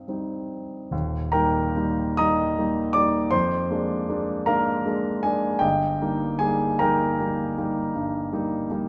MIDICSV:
0, 0, Header, 1, 2, 480
1, 0, Start_track
1, 0, Key_signature, -3, "major"
1, 0, Tempo, 835655
1, 529, Time_signature, 12, 3, 24, 8
1, 1485, Tempo, 752823
1, 2445, Tempo, 779221
1, 4365, Tempo, 749064
1, 5440, End_track
2, 0, Start_track
2, 0, Title_t, "Grand piano"
2, 0, Program_c, 0, 0
2, 0, Control_c, 0, 64, 127
2, 0, Note_on_c, 0, 43, 39
2, 0, Note_on_c, 0, 55, 30
2, 0, Note_on_c, 0, 60, 31
2, 0, Note_on_c, 0, 63, 33
2, 45, Note_off_c, 0, 55, 0
2, 45, Note_on_c, 0, 55, 29
2, 50, Note_off_c, 0, 60, 0
2, 50, Note_on_c, 0, 60, 31
2, 52, Note_off_c, 0, 63, 0
2, 52, Note_on_c, 0, 63, 34
2, 506, Note_off_c, 0, 55, 0
2, 508, Note_off_c, 0, 60, 0
2, 509, Note_off_c, 0, 63, 0
2, 524, Note_on_c, 0, 27, 51
2, 529, Note_on_c, 0, 39, 54
2, 540, Control_c, 0, 64, 0
2, 546, Note_off_c, 0, 43, 0
2, 653, Control_c, 0, 64, 127
2, 755, Note_off_c, 0, 27, 0
2, 757, Note_on_c, 0, 82, 76
2, 758, Note_off_c, 0, 39, 0
2, 762, Note_on_c, 0, 79, 58
2, 763, Note_on_c, 0, 70, 57
2, 770, Note_on_c, 0, 55, 39
2, 773, Note_on_c, 0, 58, 42
2, 773, Note_on_c, 0, 63, 41
2, 995, Note_off_c, 0, 55, 0
2, 996, Note_off_c, 0, 58, 0
2, 996, Note_off_c, 0, 63, 0
2, 1012, Note_on_c, 0, 58, 39
2, 1015, Note_on_c, 0, 63, 45
2, 1016, Note_on_c, 0, 55, 41
2, 1234, Note_off_c, 0, 58, 0
2, 1234, Note_off_c, 0, 79, 0
2, 1235, Note_off_c, 0, 70, 0
2, 1236, Note_off_c, 0, 55, 0
2, 1236, Note_off_c, 0, 63, 0
2, 1248, Note_off_c, 0, 82, 0
2, 1248, Note_on_c, 0, 87, 88
2, 1255, Note_on_c, 0, 75, 62
2, 1256, Note_on_c, 0, 82, 66
2, 1263, Note_on_c, 0, 55, 40
2, 1266, Note_on_c, 0, 63, 43
2, 1267, Note_on_c, 0, 58, 39
2, 1466, Note_off_c, 0, 55, 0
2, 1467, Note_off_c, 0, 63, 0
2, 1468, Note_off_c, 0, 58, 0
2, 1484, Note_on_c, 0, 58, 43
2, 1485, Note_on_c, 0, 55, 43
2, 1489, Note_on_c, 0, 63, 45
2, 1699, Note_off_c, 0, 75, 0
2, 1700, Note_off_c, 0, 82, 0
2, 1702, Note_off_c, 0, 55, 0
2, 1702, Note_off_c, 0, 58, 0
2, 1705, Note_off_c, 0, 63, 0
2, 1705, Note_on_c, 0, 86, 82
2, 1713, Note_on_c, 0, 74, 66
2, 1721, Note_off_c, 0, 87, 0
2, 1721, Note_on_c, 0, 55, 38
2, 1726, Note_on_c, 0, 58, 40
2, 1729, Note_on_c, 0, 63, 47
2, 1937, Note_off_c, 0, 55, 0
2, 1939, Note_off_c, 0, 58, 0
2, 1939, Note_off_c, 0, 74, 0
2, 1941, Note_off_c, 0, 63, 0
2, 1944, Note_on_c, 0, 84, 88
2, 1947, Note_on_c, 0, 72, 67
2, 1952, Note_off_c, 0, 86, 0
2, 1957, Note_on_c, 0, 41, 57
2, 1973, Control_c, 0, 64, 0
2, 2060, Control_c, 0, 64, 127
2, 2191, Note_off_c, 0, 41, 0
2, 2199, Note_on_c, 0, 58, 43
2, 2201, Note_on_c, 0, 56, 44
2, 2207, Note_on_c, 0, 62, 43
2, 2420, Note_off_c, 0, 58, 0
2, 2421, Note_off_c, 0, 56, 0
2, 2425, Note_off_c, 0, 62, 0
2, 2446, Note_on_c, 0, 58, 40
2, 2447, Note_on_c, 0, 56, 42
2, 2453, Note_on_c, 0, 62, 43
2, 2653, Note_off_c, 0, 72, 0
2, 2661, Note_off_c, 0, 58, 0
2, 2662, Note_off_c, 0, 56, 0
2, 2665, Note_off_c, 0, 62, 0
2, 2673, Note_on_c, 0, 82, 77
2, 2676, Note_off_c, 0, 84, 0
2, 2678, Note_on_c, 0, 70, 67
2, 2679, Note_on_c, 0, 77, 60
2, 2689, Note_on_c, 0, 56, 42
2, 2689, Note_on_c, 0, 58, 42
2, 2689, Note_on_c, 0, 62, 44
2, 2900, Note_off_c, 0, 56, 0
2, 2900, Note_off_c, 0, 58, 0
2, 2900, Note_off_c, 0, 62, 0
2, 2917, Note_on_c, 0, 56, 43
2, 2919, Note_on_c, 0, 58, 38
2, 2924, Note_on_c, 0, 62, 44
2, 3130, Note_off_c, 0, 70, 0
2, 3130, Note_off_c, 0, 77, 0
2, 3132, Note_off_c, 0, 56, 0
2, 3133, Note_off_c, 0, 58, 0
2, 3136, Note_off_c, 0, 62, 0
2, 3145, Note_on_c, 0, 80, 73
2, 3150, Note_on_c, 0, 68, 55
2, 3152, Note_off_c, 0, 82, 0
2, 3157, Note_on_c, 0, 56, 41
2, 3160, Note_on_c, 0, 58, 41
2, 3164, Note_on_c, 0, 62, 45
2, 3368, Note_on_c, 0, 79, 82
2, 3373, Note_off_c, 0, 56, 0
2, 3375, Note_off_c, 0, 58, 0
2, 3377, Note_off_c, 0, 62, 0
2, 3377, Note_off_c, 0, 68, 0
2, 3377, Note_on_c, 0, 67, 58
2, 3380, Note_on_c, 0, 31, 51
2, 3380, Note_on_c, 0, 75, 58
2, 3381, Note_on_c, 0, 43, 52
2, 3391, Note_off_c, 0, 80, 0
2, 3408, Control_c, 0, 64, 0
2, 3494, Control_c, 0, 64, 127
2, 3625, Note_off_c, 0, 31, 0
2, 3625, Note_off_c, 0, 43, 0
2, 3630, Note_on_c, 0, 55, 42
2, 3632, Note_on_c, 0, 58, 47
2, 3632, Note_on_c, 0, 63, 49
2, 3853, Note_off_c, 0, 67, 0
2, 3855, Note_off_c, 0, 75, 0
2, 3858, Note_off_c, 0, 55, 0
2, 3859, Note_off_c, 0, 58, 0
2, 3859, Note_off_c, 0, 63, 0
2, 3860, Note_on_c, 0, 80, 78
2, 3868, Note_on_c, 0, 68, 59
2, 3872, Note_on_c, 0, 55, 46
2, 3873, Note_off_c, 0, 79, 0
2, 3877, Note_on_c, 0, 58, 41
2, 3880, Note_on_c, 0, 63, 46
2, 4098, Note_off_c, 0, 55, 0
2, 4101, Note_off_c, 0, 58, 0
2, 4102, Note_off_c, 0, 63, 0
2, 4103, Note_off_c, 0, 68, 0
2, 4108, Note_on_c, 0, 82, 74
2, 4114, Note_on_c, 0, 70, 64
2, 4117, Note_off_c, 0, 80, 0
2, 4117, Note_on_c, 0, 79, 61
2, 4125, Note_on_c, 0, 55, 46
2, 4125, Note_on_c, 0, 58, 45
2, 4129, Note_on_c, 0, 63, 48
2, 4339, Note_off_c, 0, 55, 0
2, 4339, Note_off_c, 0, 58, 0
2, 4341, Note_off_c, 0, 63, 0
2, 4362, Note_on_c, 0, 55, 46
2, 4363, Note_on_c, 0, 58, 46
2, 4369, Note_on_c, 0, 63, 49
2, 4581, Note_off_c, 0, 55, 0
2, 4582, Note_off_c, 0, 58, 0
2, 4585, Note_off_c, 0, 63, 0
2, 4604, Note_on_c, 0, 55, 44
2, 4605, Note_on_c, 0, 63, 45
2, 4607, Note_on_c, 0, 58, 46
2, 4821, Note_off_c, 0, 55, 0
2, 4822, Note_off_c, 0, 63, 0
2, 4823, Note_off_c, 0, 58, 0
2, 4841, Note_on_c, 0, 43, 54
2, 5076, Note_off_c, 0, 43, 0
2, 5080, Note_on_c, 0, 55, 47
2, 5085, Note_on_c, 0, 58, 43
2, 5088, Note_on_c, 0, 63, 54
2, 5299, Note_off_c, 0, 55, 0
2, 5302, Note_off_c, 0, 58, 0
2, 5303, Note_off_c, 0, 63, 0
2, 5323, Note_on_c, 0, 55, 41
2, 5329, Note_on_c, 0, 58, 47
2, 5330, Note_on_c, 0, 63, 46
2, 5440, Note_off_c, 0, 55, 0
2, 5440, Note_off_c, 0, 58, 0
2, 5440, Note_off_c, 0, 63, 0
2, 5440, Note_off_c, 0, 70, 0
2, 5440, Note_off_c, 0, 79, 0
2, 5440, Note_off_c, 0, 82, 0
2, 5440, End_track
0, 0, End_of_file